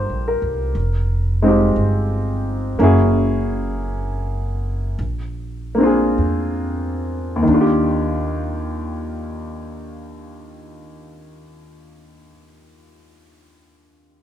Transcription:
0, 0, Header, 1, 3, 480
1, 0, Start_track
1, 0, Key_signature, -3, "major"
1, 0, Tempo, 1010101
1, 1321, Tempo, 1063830
1, 1322, Time_signature, 4, 2, 24, 8
1, 1801, Tempo, 1127820
1, 2281, Tempo, 1204819
1, 2761, Tempo, 1293103
1, 3241, Tempo, 1324503
1, 5690, End_track
2, 0, Start_track
2, 0, Title_t, "Grand piano"
2, 0, Program_c, 0, 0
2, 0, Control_c, 0, 64, 127
2, 0, Note_on_c, 0, 55, 39
2, 0, Note_on_c, 0, 58, 38
2, 0, Note_on_c, 0, 62, 37
2, 0, Note_on_c, 0, 65, 39
2, 0, Note_on_c, 0, 67, 44
2, 0, Note_on_c, 0, 72, 42
2, 132, Note_on_c, 0, 70, 38
2, 263, Note_off_c, 0, 72, 0
2, 345, Note_off_c, 0, 55, 0
2, 352, Note_off_c, 0, 58, 0
2, 357, Note_off_c, 0, 62, 0
2, 360, Control_c, 0, 64, 0
2, 364, Note_off_c, 0, 65, 0
2, 370, Note_off_c, 0, 67, 0
2, 433, Control_c, 0, 64, 127
2, 460, Note_off_c, 0, 70, 0
2, 676, Note_on_c, 0, 56, 42
2, 683, Note_on_c, 0, 60, 41
2, 688, Note_on_c, 0, 63, 38
2, 697, Note_on_c, 0, 65, 40
2, 702, Note_on_c, 0, 67, 48
2, 1321, Note_off_c, 0, 56, 0
2, 1324, Note_off_c, 0, 60, 0
2, 1325, Note_on_c, 0, 58, 50
2, 1326, Note_off_c, 0, 63, 0
2, 1329, Control_c, 0, 64, 0
2, 1330, Note_on_c, 0, 61, 44
2, 1331, Note_off_c, 0, 65, 0
2, 1333, Note_off_c, 0, 67, 0
2, 1338, Note_on_c, 0, 64, 47
2, 1342, Note_on_c, 0, 66, 47
2, 1347, Note_on_c, 0, 68, 60
2, 1397, Control_c, 0, 64, 127
2, 2283, Note_off_c, 0, 58, 0
2, 2285, Note_off_c, 0, 61, 0
2, 2286, Control_c, 0, 64, 0
2, 2288, Note_off_c, 0, 64, 0
2, 2291, Note_off_c, 0, 66, 0
2, 2293, Note_off_c, 0, 68, 0
2, 2359, Control_c, 0, 64, 127
2, 2590, Note_on_c, 0, 58, 47
2, 2603, Note_on_c, 0, 60, 39
2, 2613, Note_on_c, 0, 62, 41
2, 2623, Note_on_c, 0, 65, 41
2, 2634, Note_on_c, 0, 68, 48
2, 3200, Note_on_c, 0, 39, 53
2, 3225, Note_on_c, 0, 51, 50
2, 3233, Note_off_c, 0, 58, 0
2, 3239, Note_off_c, 0, 60, 0
2, 3241, Note_off_c, 0, 62, 0
2, 3245, Control_c, 0, 64, 0
2, 3246, Note_on_c, 0, 62, 44
2, 3249, Note_off_c, 0, 65, 0
2, 3254, Note_off_c, 0, 68, 0
2, 3268, Note_on_c, 0, 65, 44
2, 3292, Note_on_c, 0, 67, 52
2, 3304, Control_c, 0, 64, 127
2, 4952, Note_off_c, 0, 39, 0
2, 4976, Note_off_c, 0, 51, 0
2, 4997, Note_off_c, 0, 62, 0
2, 5018, Note_off_c, 0, 65, 0
2, 5043, Note_off_c, 0, 67, 0
2, 5690, End_track
3, 0, Start_track
3, 0, Title_t, "Upright bass"
3, 0, Program_c, 1, 32
3, 45, Note_on_c, 1, 34, 49
3, 188, Note_off_c, 1, 34, 0
3, 200, Note_on_c, 1, 36, 57
3, 344, Note_off_c, 1, 36, 0
3, 356, Note_on_c, 1, 29, 68
3, 814, Note_off_c, 1, 29, 0
3, 836, Note_on_c, 1, 31, 62
3, 1305, Note_off_c, 1, 31, 0
3, 1328, Note_on_c, 1, 30, 74
3, 2268, Note_off_c, 1, 30, 0
3, 2287, Note_on_c, 1, 34, 73
3, 2748, Note_off_c, 1, 34, 0
3, 2762, Note_on_c, 1, 40, 60
3, 3226, Note_off_c, 1, 40, 0
3, 3243, Note_on_c, 1, 39, 65
3, 4979, Note_off_c, 1, 39, 0
3, 5690, End_track
0, 0, End_of_file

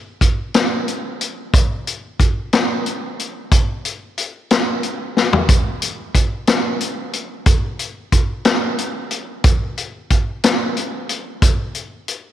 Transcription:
0, 0, Header, 1, 2, 480
1, 0, Start_track
1, 0, Tempo, 659341
1, 1117, Time_signature, 6, 3, 24, 8
1, 8972, End_track
2, 0, Start_track
2, 0, Title_t, "Drums"
2, 154, Note_on_c, 9, 36, 75
2, 157, Note_on_c, 9, 42, 75
2, 227, Note_off_c, 9, 36, 0
2, 229, Note_off_c, 9, 42, 0
2, 394, Note_on_c, 9, 42, 76
2, 399, Note_on_c, 9, 38, 105
2, 467, Note_off_c, 9, 42, 0
2, 472, Note_off_c, 9, 38, 0
2, 639, Note_on_c, 9, 42, 59
2, 712, Note_off_c, 9, 42, 0
2, 879, Note_on_c, 9, 42, 63
2, 952, Note_off_c, 9, 42, 0
2, 1119, Note_on_c, 9, 36, 115
2, 1123, Note_on_c, 9, 42, 97
2, 1191, Note_off_c, 9, 36, 0
2, 1195, Note_off_c, 9, 42, 0
2, 1362, Note_on_c, 9, 42, 62
2, 1435, Note_off_c, 9, 42, 0
2, 1599, Note_on_c, 9, 36, 77
2, 1603, Note_on_c, 9, 42, 65
2, 1672, Note_off_c, 9, 36, 0
2, 1676, Note_off_c, 9, 42, 0
2, 1839, Note_on_c, 9, 42, 72
2, 1844, Note_on_c, 9, 38, 105
2, 1912, Note_off_c, 9, 42, 0
2, 1917, Note_off_c, 9, 38, 0
2, 2082, Note_on_c, 9, 42, 62
2, 2154, Note_off_c, 9, 42, 0
2, 2326, Note_on_c, 9, 42, 62
2, 2398, Note_off_c, 9, 42, 0
2, 2560, Note_on_c, 9, 36, 97
2, 2560, Note_on_c, 9, 42, 94
2, 2632, Note_off_c, 9, 42, 0
2, 2633, Note_off_c, 9, 36, 0
2, 2801, Note_on_c, 9, 42, 61
2, 2874, Note_off_c, 9, 42, 0
2, 3040, Note_on_c, 9, 42, 71
2, 3113, Note_off_c, 9, 42, 0
2, 3279, Note_on_c, 9, 42, 83
2, 3284, Note_on_c, 9, 38, 102
2, 3352, Note_off_c, 9, 42, 0
2, 3357, Note_off_c, 9, 38, 0
2, 3516, Note_on_c, 9, 42, 63
2, 3589, Note_off_c, 9, 42, 0
2, 3762, Note_on_c, 9, 38, 63
2, 3835, Note_off_c, 9, 38, 0
2, 3879, Note_on_c, 9, 43, 86
2, 3952, Note_off_c, 9, 43, 0
2, 3995, Note_on_c, 9, 42, 98
2, 3996, Note_on_c, 9, 36, 117
2, 4068, Note_off_c, 9, 36, 0
2, 4068, Note_off_c, 9, 42, 0
2, 4235, Note_on_c, 9, 42, 69
2, 4308, Note_off_c, 9, 42, 0
2, 4474, Note_on_c, 9, 36, 74
2, 4475, Note_on_c, 9, 42, 77
2, 4547, Note_off_c, 9, 36, 0
2, 4548, Note_off_c, 9, 42, 0
2, 4712, Note_on_c, 9, 42, 91
2, 4717, Note_on_c, 9, 38, 106
2, 4784, Note_off_c, 9, 42, 0
2, 4789, Note_off_c, 9, 38, 0
2, 4954, Note_on_c, 9, 42, 66
2, 5027, Note_off_c, 9, 42, 0
2, 5193, Note_on_c, 9, 42, 67
2, 5266, Note_off_c, 9, 42, 0
2, 5429, Note_on_c, 9, 42, 88
2, 5433, Note_on_c, 9, 36, 114
2, 5502, Note_off_c, 9, 42, 0
2, 5506, Note_off_c, 9, 36, 0
2, 5672, Note_on_c, 9, 42, 59
2, 5744, Note_off_c, 9, 42, 0
2, 5913, Note_on_c, 9, 42, 67
2, 5914, Note_on_c, 9, 36, 74
2, 5986, Note_off_c, 9, 42, 0
2, 5987, Note_off_c, 9, 36, 0
2, 6149, Note_on_c, 9, 42, 80
2, 6154, Note_on_c, 9, 38, 115
2, 6222, Note_off_c, 9, 42, 0
2, 6227, Note_off_c, 9, 38, 0
2, 6394, Note_on_c, 9, 42, 69
2, 6467, Note_off_c, 9, 42, 0
2, 6629, Note_on_c, 9, 42, 70
2, 6702, Note_off_c, 9, 42, 0
2, 6870, Note_on_c, 9, 42, 99
2, 6874, Note_on_c, 9, 36, 122
2, 6943, Note_off_c, 9, 42, 0
2, 6947, Note_off_c, 9, 36, 0
2, 7116, Note_on_c, 9, 42, 70
2, 7188, Note_off_c, 9, 42, 0
2, 7354, Note_on_c, 9, 42, 71
2, 7357, Note_on_c, 9, 36, 70
2, 7427, Note_off_c, 9, 42, 0
2, 7429, Note_off_c, 9, 36, 0
2, 7597, Note_on_c, 9, 42, 100
2, 7602, Note_on_c, 9, 38, 108
2, 7670, Note_off_c, 9, 42, 0
2, 7675, Note_off_c, 9, 38, 0
2, 7837, Note_on_c, 9, 42, 70
2, 7910, Note_off_c, 9, 42, 0
2, 8074, Note_on_c, 9, 42, 76
2, 8147, Note_off_c, 9, 42, 0
2, 8315, Note_on_c, 9, 36, 114
2, 8315, Note_on_c, 9, 42, 106
2, 8387, Note_off_c, 9, 36, 0
2, 8388, Note_off_c, 9, 42, 0
2, 8551, Note_on_c, 9, 42, 64
2, 8623, Note_off_c, 9, 42, 0
2, 8794, Note_on_c, 9, 42, 64
2, 8866, Note_off_c, 9, 42, 0
2, 8972, End_track
0, 0, End_of_file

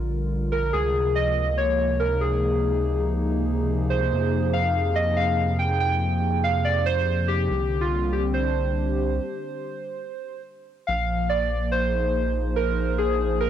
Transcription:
0, 0, Header, 1, 4, 480
1, 0, Start_track
1, 0, Tempo, 422535
1, 845, Time_signature, 4, 2, 24, 8
1, 15334, End_track
2, 0, Start_track
2, 0, Title_t, "Synth keys"
2, 0, Program_c, 0, 88
2, 589, Note_on_c, 0, 70, 87
2, 829, Note_on_c, 0, 68, 95
2, 845, Note_off_c, 0, 70, 0
2, 1311, Note_on_c, 0, 75, 103
2, 1332, Note_off_c, 0, 68, 0
2, 1790, Note_on_c, 0, 73, 97
2, 1813, Note_off_c, 0, 75, 0
2, 2268, Note_on_c, 0, 70, 89
2, 2292, Note_off_c, 0, 73, 0
2, 2509, Note_on_c, 0, 68, 75
2, 2524, Note_off_c, 0, 70, 0
2, 3432, Note_off_c, 0, 68, 0
2, 4430, Note_on_c, 0, 72, 90
2, 5150, Note_on_c, 0, 77, 97
2, 5179, Note_off_c, 0, 72, 0
2, 5629, Note_on_c, 0, 75, 98
2, 5652, Note_off_c, 0, 77, 0
2, 5868, Note_on_c, 0, 77, 100
2, 5885, Note_off_c, 0, 75, 0
2, 6323, Note_off_c, 0, 77, 0
2, 6349, Note_on_c, 0, 79, 96
2, 6577, Note_off_c, 0, 79, 0
2, 6591, Note_on_c, 0, 79, 104
2, 7312, Note_on_c, 0, 77, 94
2, 7340, Note_off_c, 0, 79, 0
2, 7550, Note_on_c, 0, 74, 98
2, 7566, Note_off_c, 0, 77, 0
2, 7791, Note_on_c, 0, 72, 97
2, 7805, Note_off_c, 0, 74, 0
2, 8270, Note_on_c, 0, 67, 89
2, 8293, Note_off_c, 0, 72, 0
2, 8873, Note_on_c, 0, 65, 88
2, 8896, Note_off_c, 0, 67, 0
2, 9213, Note_off_c, 0, 65, 0
2, 9230, Note_on_c, 0, 67, 83
2, 9342, Note_off_c, 0, 67, 0
2, 9471, Note_on_c, 0, 72, 87
2, 11833, Note_off_c, 0, 72, 0
2, 12348, Note_on_c, 0, 77, 90
2, 12830, Note_on_c, 0, 74, 88
2, 12851, Note_off_c, 0, 77, 0
2, 13283, Note_off_c, 0, 74, 0
2, 13310, Note_on_c, 0, 72, 88
2, 13992, Note_off_c, 0, 72, 0
2, 14269, Note_on_c, 0, 70, 91
2, 14749, Note_on_c, 0, 68, 88
2, 14772, Note_off_c, 0, 70, 0
2, 15227, Note_on_c, 0, 70, 94
2, 15252, Note_off_c, 0, 68, 0
2, 15334, Note_off_c, 0, 70, 0
2, 15334, End_track
3, 0, Start_track
3, 0, Title_t, "Analog synth pad"
3, 0, Program_c, 1, 89
3, 0, Note_on_c, 1, 50, 78
3, 0, Note_on_c, 1, 55, 63
3, 0, Note_on_c, 1, 65, 74
3, 0, Note_on_c, 1, 70, 80
3, 844, Note_on_c, 1, 48, 82
3, 845, Note_off_c, 1, 55, 0
3, 846, Note_off_c, 1, 50, 0
3, 1115, Note_on_c, 1, 53, 75
3, 1377, Note_on_c, 1, 58, 68
3, 1423, Note_off_c, 1, 70, 0
3, 1836, Note_off_c, 1, 65, 0
3, 2081, Note_on_c, 1, 63, 74
3, 2570, Note_on_c, 1, 68, 76
3, 8523, Note_off_c, 1, 63, 0
3, 8524, Note_off_c, 1, 53, 0
3, 8524, Note_off_c, 1, 68, 0
3, 8525, Note_off_c, 1, 48, 0
3, 8527, Note_on_c, 1, 50, 82
3, 8816, Note_on_c, 1, 55, 71
3, 8966, Note_on_c, 1, 60, 89
3, 9320, Note_on_c, 1, 62, 84
3, 9691, Note_off_c, 1, 58, 0
3, 9854, Note_on_c, 1, 67, 63
3, 10446, Note_off_c, 1, 50, 0
3, 10446, Note_off_c, 1, 60, 0
3, 10447, Note_off_c, 1, 55, 0
3, 10447, Note_off_c, 1, 62, 0
3, 10447, Note_off_c, 1, 67, 0
3, 12367, Note_on_c, 1, 53, 88
3, 12730, Note_on_c, 1, 58, 84
3, 13257, Note_on_c, 1, 63, 80
3, 13289, Note_on_c, 1, 68, 67
3, 13653, Note_on_c, 1, 72, 88
3, 15334, Note_off_c, 1, 53, 0
3, 15334, Note_off_c, 1, 58, 0
3, 15334, Note_off_c, 1, 63, 0
3, 15334, Note_off_c, 1, 68, 0
3, 15334, Note_off_c, 1, 72, 0
3, 15334, End_track
4, 0, Start_track
4, 0, Title_t, "Analog synth bass"
4, 0, Program_c, 2, 38
4, 0, Note_on_c, 2, 34, 87
4, 821, Note_off_c, 2, 34, 0
4, 846, Note_on_c, 2, 37, 88
4, 4662, Note_off_c, 2, 37, 0
4, 4685, Note_on_c, 2, 41, 86
4, 8501, Note_off_c, 2, 41, 0
4, 8526, Note_on_c, 2, 36, 85
4, 10446, Note_off_c, 2, 36, 0
4, 12367, Note_on_c, 2, 34, 88
4, 15334, Note_off_c, 2, 34, 0
4, 15334, End_track
0, 0, End_of_file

